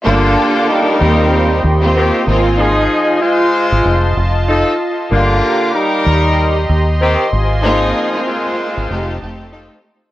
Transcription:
0.04 fingered electric bass G1, horn section D3 A#3 F4, string section A#3 D4 F4 A4, analog synth pad G4 F5 G5 D6
0.69 horn section G3 D#4 A#4
1.00 fingered electric bass D#2, string section A#3 C4 F4 G4, analog synth pad D#5 C6
1.64 fingered electric bass D#2
1.81 string section A#3 C4 F4 G4
1.96 horn section D#3 C4 G4
2.27 fingered electric bass G#1, string section A#3 C4 D#4 F4, analog synth pad F4 G#5
2.58 horn section F3 D#4 G#4
3.22 horn section G#3 F4 C5
3.72 fingered electric bass G#1
3.85 fingered electric bass F1, analog synth pad F4 A5
4.17 fingered electric bass F1
4.48 horn section F3 D#4 A4
5.10 fingered electric bass G1, horn section D3 A#3 F4, analog synth pad G4 F5 A#5 D6
5.74 horn section G3 D#4 A#4
6.05 fingered electric bass D#2, analog synth pad D#5 C6
6.69 fingered electric bass D#2
7.01 horn section D#3 C4 G4
7.32 fingered electric bass G#1, analog synth pad F4 G#5
7.62 horn section F3 D#4 G#4, string section A#3 C4 D#4 F4
8.14 string section A#3 C4 D#4 F4
8.27 horn section G#3 F4 C5
8.77 fingered electric bass G#1
8.90 fingered electric bass F1, string section A3 C4 D#4 G4, analog synth pad A5
9.21 fingered electric bass F1, string section A3 C4 D#4 G4
9.52 horn section F3 D#4 A4

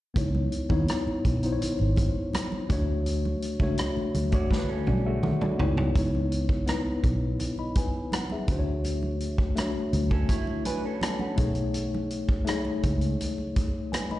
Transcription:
0.14 fingered electric bass C#2, tine electric piano B3 D#4 E4 C#5, kick, closed hi-hat, muted conga
0.35 high conga
0.52 closed hi-hat
0.69 fingered electric bass D#2, tine electric piano B3 D#4 E4 C#5, kick, high conga
0.88 cross-stick, closed hi-hat, muted conga
1.07 muted fingered electric bass stroke, muted conga
1.25 fingered electric bass B1, kick, closed hi-hat, high conga, low conga
1.43 tine electric piano B3 D#4 E4 C5, closed hi-hat
1.52 tine electric piano C#5
1.61 muted fingered electric bass stroke, closed hi-hat, low conga
1.79 fingered electric bass G#1, muted conga
1.96 kick, closed hi-hat, high conga
2.33 cross-stick, closed hi-hat, muted conga, high conga
2.52 high conga
2.69 fingered electric bass D2, tine electric piano A3 D4 F#4 C#5, kick, closed hi-hat
3.06 closed hi-hat, muted conga
3.25 muted conga, high conga
3.42 closed hi-hat
3.60 fingered electric bass C#2, tine electric piano A3 D4 F#4 C#5, kick, high conga
3.77 cross-stick, closed hi-hat, muted conga
3.97 muted fingered electric bass stroke, muted conga
4.14 fingered electric bass D2, closed hi-hat, high conga, low conga
4.32 tine electric piano D3 A3 F#4 C#5, clean electric guitar F#4 D5, kick, closed hi-hat
4.51 clean electric guitar D4 B4, kick, snare, low conga
4.69 clean electric guitar C#4 A4
4.86 fingered electric bass B1, tine electric piano F#4 D5, high tom, high conga
5.06 clean electric guitar A3 F#4, tine electric piano G#4 E5
5.23 tine electric piano A4 F#5, mid tom, muted conga, high conga
5.41 tine electric piano F#4 D5, mid tom, high conga
5.58 fingered electric bass C#2, tine electric piano B3 D#4 E4 C#5, floor tom
5.77 floor tom
5.95 fingered electric bass C#2, tine electric piano B3 D#4 E4 C#5, kick, closed hi-hat, muted conga
6.15 high conga
6.32 closed hi-hat
6.49 kick
6.66 tine electric piano B3 D#4 E4 B4, cross-stick, closed hi-hat
7.04 fingered electric bass B1, kick, closed hi-hat, high conga, low conga
7.40 closed hi-hat, muted conga, low conga
7.58 tine electric piano D#5 B5, muted conga
7.75 tine electric piano B4 G#5, kick, closed hi-hat, high conga
8.12 tine electric piano F#5, cross-stick, closed hi-hat, muted conga, high conga
8.30 tine electric piano G#4 E5, muted conga, high conga
8.48 fingered electric bass D2, tine electric piano A3 D4 F#4, kick, closed hi-hat
8.52 tine electric piano C5
8.59 tine electric piano C#5
8.84 closed hi-hat, muted conga
9.03 high conga
9.20 closed hi-hat
9.38 kick
9.56 tine electric piano A3 D4 F#4 C#5, cross-stick, closed hi-hat, muted conga
9.93 fingered electric bass D2, closed hi-hat, high conga, low conga
10.11 clean electric guitar C#4 A4, kick
10.29 clean electric guitar E4 C#5, kick, closed hi-hat, muted conga, low conga
10.47 muted conga
10.65 clean electric guitar D4 B4, tine electric piano B4 G#5, closed hi-hat, high conga
10.85 clean electric guitar C#4 A4
11.01 tine electric piano C#5 A5, cross-stick, closed hi-hat, muted conga, high conga
11.19 tine electric piano A4 F#5, high conga
11.36 fingered electric bass B1, tine electric piano A3 D#4 G#4 C#5, kick, closed hi-hat
11.55 closed hi-hat
11.74 closed hi-hat, muted conga
11.94 muted conga, high conga
12.10 closed hi-hat
12.29 kick
12.45 tine electric piano A3 D#4 G#4 C#5, cross-stick, closed hi-hat, muted conga
12.65 muted conga
12.83 fingered electric bass C#2, kick, closed hi-hat, high conga, low conga
13.01 closed hi-hat
13.21 closed hi-hat, muted conga, low conga
13.38 muted conga
13.56 kick, closed hi-hat, high conga
13.92 tine electric piano B4 G#5, cross-stick, closed hi-hat, muted conga, high conga
14.11 tine electric piano D#5 B5, high conga

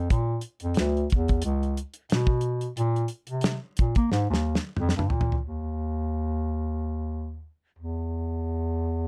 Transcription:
0.10 bass clarinet A#2, kick, closed hi-hat
0.41 closed hi-hat
0.60 bass clarinet F2, closed hi-hat
0.74 snare, closed hi-hat
0.78 bass clarinet D2
0.97 closed hi-hat
1.10 bass clarinet E2, kick, closed hi-hat
1.28 kick, closed hi-hat
1.42 bass clarinet C#2, closed hi-hat
1.63 closed hi-hat
1.77 closed hi-hat
1.94 closed hi-hat
2.10 bass clarinet B2, snare, closed hi-hat
2.27 kick
2.41 closed hi-hat
2.61 closed hi-hat
2.77 bass clarinet A#2, closed hi-hat
2.96 closed hi-hat
3.08 closed hi-hat
3.27 bass clarinet C3, closed hi-hat
3.41 snare, closed hi-hat
3.77 bass clarinet A#2, kick, closed hi-hat
3.95 bass clarinet A#3, kick, closed hi-hat
4.12 bass clarinet G#2, snare
4.30 bass clarinet D#2, snare
4.55 snare
4.77 bass clarinet F2, mid tom
4.89 snare
4.96 bass clarinet G2, mid tom
5.10 bass clarinet A#2, floor tom
5.21 floor tom
5.32 floor tom
5.45 bass clarinet D#2
7.79 bass clarinet E2

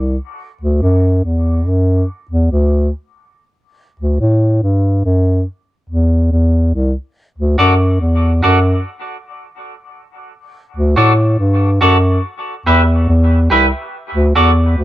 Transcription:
Already playing: bass clarinet C2
0.61 bass clarinet D2
0.82 bass clarinet F#2
1.25 bass clarinet E2
1.67 bass clarinet F#2
2.31 bass clarinet E2
2.52 bass clarinet D2
4.00 bass clarinet D2
4.21 bass clarinet A2
4.63 bass clarinet G2
5.05 bass clarinet F#2
5.90 bass clarinet E2
6.32 bass clarinet E2
6.74 bass clarinet C2
7.38 bass clarinet D2
7.58 bass clarinet F#2, clean electric guitar F#4 A4 D5
8.01 bass clarinet E2
8.43 bass clarinet F#2, clean electric guitar F#4 A4 D5
10.76 bass clarinet D2
10.96 bass clarinet A2, clean electric guitar F#4 A4 D5
11.39 bass clarinet G2
11.81 bass clarinet F#2, clean electric guitar F#4 A4 D5
12.66 bass clarinet E2, clean electric guitar G4 B4 E5
13.09 bass clarinet E2
13.50 bass clarinet C2, clean electric guitar G4 B4 E5
14.15 bass clarinet D2
14.35 bass clarinet E2, clean electric guitar F#4 A4 D5
14.78 bass clarinet D2

